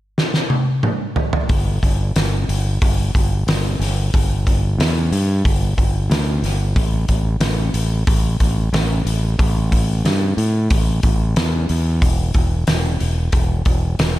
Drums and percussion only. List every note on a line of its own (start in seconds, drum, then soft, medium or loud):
0.18 snare medium
0.34 snare medium
0.50 high tom medium
0.83 mid tom medium
1.16 floor tom medium
1.33 floor tom loud
1.49 kick loud
1.49 open hi-hat medium
1.83 kick medium
1.83 open hi-hat medium
2.16 snare medium
2.16 open hi-hat medium
2.49 open hi-hat medium
2.82 kick loud
2.82 open hi-hat medium
3.15 kick medium
3.15 open hi-hat medium
3.48 snare loud
3.48 open hi-hat medium
3.82 snare soft
3.82 open hi-hat medium
4.14 kick loud
4.14 open hi-hat medium
4.47 kick medium
4.47 open hi-hat medium
4.80 snare loud
4.80 open hi-hat medium
5.12 open hi-hat soft
5.45 kick loud
5.45 open hi-hat medium
5.78 kick medium
5.78 open hi-hat medium
6.11 snare loud
6.11 open hi-hat medium
6.44 snare soft
6.44 open hi-hat medium
6.76 kick loud
6.76 open hi-hat medium
7.08 kick medium
7.08 open hi-hat medium
7.41 snare loud
7.41 open hi-hat medium
7.74 open hi-hat medium
8.07 kick loud
8.07 open hi-hat medium
8.40 kick medium
8.40 open hi-hat medium
8.74 snare loud
8.74 open hi-hat medium
9.07 open hi-hat medium
9.39 kick loud
9.39 open hi-hat medium
9.72 kick medium
9.72 open hi-hat medium
10.05 snare medium
10.05 open hi-hat medium
10.38 open hi-hat soft
10.70 kick loud
10.70 open hi-hat medium
11.03 kick medium
11.03 open hi-hat medium
11.36 snare loud
11.36 open hi-hat medium
11.69 open hi-hat soft
12.02 kick loud
12.02 open hi-hat medium
12.34 kick medium
12.34 open hi-hat medium
12.67 snare loud
12.67 open hi-hat medium
13.00 open hi-hat medium
13.32 kick loud
13.32 open hi-hat medium
13.65 kick medium
13.65 open hi-hat medium
13.99 snare loud
13.99 open hi-hat medium